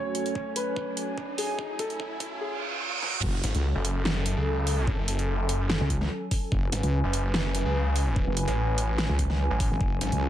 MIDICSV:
0, 0, Header, 1, 9, 480
1, 0, Start_track
1, 0, Key_signature, 3, "minor"
1, 0, Tempo, 410959
1, 1854, Time_signature, 4, 2, 24, 8
1, 12022, End_track
2, 0, Start_track
2, 0, Title_t, "Ambient pad"
2, 0, Program_c, 0, 92
2, 0, Note_on_c, 0, 61, 74
2, 0, Note_on_c, 0, 73, 74
2, 949, Note_on_c, 0, 80, 73
2, 2813, Note_off_c, 0, 61, 0
2, 2813, Note_off_c, 0, 73, 0
2, 2814, Note_off_c, 0, 80, 0
2, 4346, Note_on_c, 0, 80, 77
2, 12022, Note_off_c, 0, 80, 0
2, 12022, End_track
3, 0, Start_track
3, 0, Title_t, "Grand piano"
3, 0, Program_c, 1, 0
3, 0, Note_on_c, 1, 73, 90
3, 563, Note_off_c, 1, 73, 0
3, 653, Note_on_c, 1, 71, 91
3, 1523, Note_off_c, 1, 71, 0
3, 1612, Note_on_c, 1, 68, 91
3, 2006, Note_off_c, 1, 68, 0
3, 2093, Note_on_c, 1, 69, 93
3, 2723, Note_off_c, 1, 69, 0
3, 2813, Note_on_c, 1, 68, 91
3, 3206, Note_off_c, 1, 68, 0
3, 12022, End_track
4, 0, Start_track
4, 0, Title_t, "Analog synth pad"
4, 0, Program_c, 2, 89
4, 0, Note_on_c, 2, 42, 79
4, 0, Note_on_c, 2, 54, 72
4, 0, Note_on_c, 2, 57, 75
4, 0, Note_on_c, 2, 80, 90
4, 2767, Note_off_c, 2, 42, 0
4, 2767, Note_off_c, 2, 54, 0
4, 2768, Note_off_c, 2, 57, 0
4, 2768, Note_off_c, 2, 80, 0
4, 3775, Note_on_c, 2, 54, 83
4, 3775, Note_on_c, 2, 61, 77
4, 3775, Note_on_c, 2, 69, 91
4, 3775, Note_on_c, 2, 80, 79
4, 7601, Note_off_c, 2, 69, 0
4, 7615, Note_on_c, 2, 71, 93
4, 11441, Note_off_c, 2, 71, 0
4, 11454, Note_on_c, 2, 69, 90
4, 12022, Note_off_c, 2, 54, 0
4, 12022, Note_off_c, 2, 61, 0
4, 12022, Note_off_c, 2, 69, 0
4, 12022, Note_off_c, 2, 80, 0
4, 12022, End_track
5, 0, Start_track
5, 0, Title_t, "Wobble bass"
5, 0, Program_c, 3, 39
5, 3773, Note_on_c, 3, 30, 92
5, 3995, Note_off_c, 3, 30, 0
5, 4139, Note_on_c, 3, 37, 96
5, 4360, Note_off_c, 3, 37, 0
5, 6781, Note_on_c, 3, 37, 93
5, 7115, Note_off_c, 3, 37, 0
5, 7614, Note_on_c, 3, 30, 91
5, 7836, Note_off_c, 3, 30, 0
5, 7980, Note_on_c, 3, 37, 96
5, 8200, Note_off_c, 3, 37, 0
5, 9660, Note_on_c, 3, 30, 99
5, 9880, Note_off_c, 3, 30, 0
5, 10620, Note_on_c, 3, 37, 96
5, 11080, Note_off_c, 3, 37, 0
5, 11339, Note_on_c, 3, 32, 93
5, 11435, Note_off_c, 3, 32, 0
5, 11453, Note_on_c, 3, 30, 97
5, 11676, Note_off_c, 3, 30, 0
5, 11821, Note_on_c, 3, 37, 96
5, 12022, Note_off_c, 3, 37, 0
5, 12022, End_track
6, 0, Start_track
6, 0, Title_t, "Detuned saw bass"
6, 0, Program_c, 4, 39
6, 4013, Note_on_c, 4, 32, 95
6, 4120, Note_off_c, 4, 32, 0
6, 4380, Note_on_c, 4, 30, 98
6, 5080, Note_off_c, 4, 30, 0
6, 5101, Note_on_c, 4, 37, 99
6, 5801, Note_off_c, 4, 37, 0
6, 5821, Note_on_c, 4, 30, 98
6, 6761, Note_off_c, 4, 30, 0
6, 7853, Note_on_c, 4, 32, 98
6, 7961, Note_off_c, 4, 32, 0
6, 8220, Note_on_c, 4, 30, 98
6, 8920, Note_off_c, 4, 30, 0
6, 8940, Note_on_c, 4, 37, 99
6, 9640, Note_off_c, 4, 37, 0
6, 9900, Note_on_c, 4, 33, 94
6, 10600, Note_off_c, 4, 33, 0
6, 11101, Note_on_c, 4, 33, 98
6, 11321, Note_off_c, 4, 33, 0
6, 11693, Note_on_c, 4, 32, 94
6, 11801, Note_off_c, 4, 32, 0
6, 12022, End_track
7, 0, Start_track
7, 0, Title_t, "Reverse cymbal"
7, 0, Program_c, 5, 119
7, 2812, Note_on_c, 5, 60, 73
7, 3773, Note_off_c, 5, 60, 0
7, 12022, End_track
8, 0, Start_track
8, 0, Title_t, "Riser"
8, 0, Program_c, 6, 103
8, 0, Note_on_c, 6, 60, 74
8, 3773, Note_off_c, 6, 60, 0
8, 12022, End_track
9, 0, Start_track
9, 0, Title_t, "Drums"
9, 173, Note_on_c, 9, 42, 74
9, 290, Note_off_c, 9, 42, 0
9, 301, Note_on_c, 9, 42, 35
9, 413, Note_on_c, 9, 36, 104
9, 418, Note_off_c, 9, 42, 0
9, 530, Note_off_c, 9, 36, 0
9, 653, Note_on_c, 9, 42, 77
9, 770, Note_off_c, 9, 42, 0
9, 893, Note_on_c, 9, 36, 94
9, 1010, Note_off_c, 9, 36, 0
9, 1133, Note_on_c, 9, 42, 75
9, 1250, Note_off_c, 9, 42, 0
9, 1373, Note_on_c, 9, 36, 103
9, 1490, Note_off_c, 9, 36, 0
9, 1613, Note_on_c, 9, 46, 87
9, 1730, Note_off_c, 9, 46, 0
9, 1853, Note_on_c, 9, 36, 99
9, 1970, Note_off_c, 9, 36, 0
9, 2092, Note_on_c, 9, 42, 72
9, 2093, Note_on_c, 9, 36, 102
9, 2209, Note_off_c, 9, 42, 0
9, 2210, Note_off_c, 9, 36, 0
9, 2220, Note_on_c, 9, 42, 36
9, 2333, Note_on_c, 9, 36, 103
9, 2337, Note_off_c, 9, 42, 0
9, 2450, Note_off_c, 9, 36, 0
9, 2573, Note_on_c, 9, 36, 105
9, 2573, Note_on_c, 9, 42, 78
9, 2689, Note_off_c, 9, 36, 0
9, 2690, Note_off_c, 9, 42, 0
9, 3533, Note_on_c, 9, 38, 60
9, 3650, Note_off_c, 9, 38, 0
9, 3661, Note_on_c, 9, 47, 79
9, 3773, Note_on_c, 9, 36, 118
9, 3773, Note_on_c, 9, 49, 103
9, 3778, Note_off_c, 9, 47, 0
9, 3890, Note_off_c, 9, 36, 0
9, 3890, Note_off_c, 9, 49, 0
9, 4013, Note_on_c, 9, 42, 81
9, 4130, Note_off_c, 9, 42, 0
9, 4141, Note_on_c, 9, 42, 38
9, 4258, Note_off_c, 9, 42, 0
9, 4493, Note_on_c, 9, 42, 82
9, 4610, Note_off_c, 9, 42, 0
9, 4733, Note_on_c, 9, 38, 118
9, 4850, Note_off_c, 9, 38, 0
9, 4972, Note_on_c, 9, 42, 82
9, 5089, Note_off_c, 9, 42, 0
9, 5452, Note_on_c, 9, 46, 91
9, 5569, Note_off_c, 9, 46, 0
9, 5693, Note_on_c, 9, 36, 123
9, 5810, Note_off_c, 9, 36, 0
9, 5933, Note_on_c, 9, 42, 80
9, 6050, Note_off_c, 9, 42, 0
9, 6061, Note_on_c, 9, 42, 37
9, 6178, Note_off_c, 9, 42, 0
9, 6413, Note_on_c, 9, 42, 84
9, 6529, Note_off_c, 9, 42, 0
9, 6652, Note_on_c, 9, 38, 122
9, 6769, Note_off_c, 9, 38, 0
9, 6893, Note_on_c, 9, 42, 78
9, 6894, Note_on_c, 9, 36, 61
9, 7010, Note_off_c, 9, 36, 0
9, 7010, Note_off_c, 9, 42, 0
9, 7021, Note_on_c, 9, 38, 37
9, 7138, Note_off_c, 9, 38, 0
9, 7373, Note_on_c, 9, 46, 90
9, 7374, Note_on_c, 9, 36, 110
9, 7490, Note_off_c, 9, 36, 0
9, 7490, Note_off_c, 9, 46, 0
9, 7614, Note_on_c, 9, 36, 126
9, 7731, Note_off_c, 9, 36, 0
9, 7854, Note_on_c, 9, 42, 80
9, 7970, Note_off_c, 9, 42, 0
9, 7981, Note_on_c, 9, 42, 37
9, 8098, Note_off_c, 9, 42, 0
9, 8333, Note_on_c, 9, 42, 79
9, 8450, Note_off_c, 9, 42, 0
9, 8573, Note_on_c, 9, 38, 118
9, 8689, Note_off_c, 9, 38, 0
9, 8814, Note_on_c, 9, 42, 75
9, 8931, Note_off_c, 9, 42, 0
9, 9293, Note_on_c, 9, 46, 90
9, 9410, Note_off_c, 9, 46, 0
9, 9533, Note_on_c, 9, 36, 123
9, 9650, Note_off_c, 9, 36, 0
9, 9773, Note_on_c, 9, 42, 74
9, 9890, Note_off_c, 9, 42, 0
9, 9901, Note_on_c, 9, 42, 36
9, 10017, Note_off_c, 9, 42, 0
9, 10253, Note_on_c, 9, 42, 75
9, 10370, Note_off_c, 9, 42, 0
9, 10493, Note_on_c, 9, 38, 122
9, 10610, Note_off_c, 9, 38, 0
9, 10733, Note_on_c, 9, 36, 63
9, 10733, Note_on_c, 9, 42, 74
9, 10850, Note_off_c, 9, 36, 0
9, 10850, Note_off_c, 9, 42, 0
9, 10861, Note_on_c, 9, 38, 37
9, 10978, Note_off_c, 9, 38, 0
9, 11213, Note_on_c, 9, 46, 90
9, 11214, Note_on_c, 9, 36, 113
9, 11330, Note_off_c, 9, 36, 0
9, 11330, Note_off_c, 9, 46, 0
9, 11454, Note_on_c, 9, 36, 116
9, 11570, Note_off_c, 9, 36, 0
9, 11693, Note_on_c, 9, 42, 75
9, 11810, Note_off_c, 9, 42, 0
9, 11822, Note_on_c, 9, 42, 35
9, 11939, Note_off_c, 9, 42, 0
9, 12022, End_track
0, 0, End_of_file